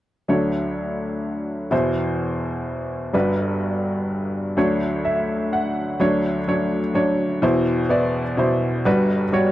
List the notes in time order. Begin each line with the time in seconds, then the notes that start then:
0.28 D2 D3 F#3 D4 C#5
1.71 E2 B2 E3 E4 C5
3.13 G1 G2 G3 F#4 B4
4.57 D2 D3 F#3 D4 C#5
5.05 E5
5.53 F#5
6.00 D2 D3 F#3 D4 C#5
6.47 F#3 D4 C#5
6.94 F#3 D4 C#5
7.42 E2 B2 E3 E4 C5
7.89 B3 E4 D5
8.37 B2 E4 C5
8.85 G1 G2 G3 F#4 B4
9.32 G3 F#4 C#5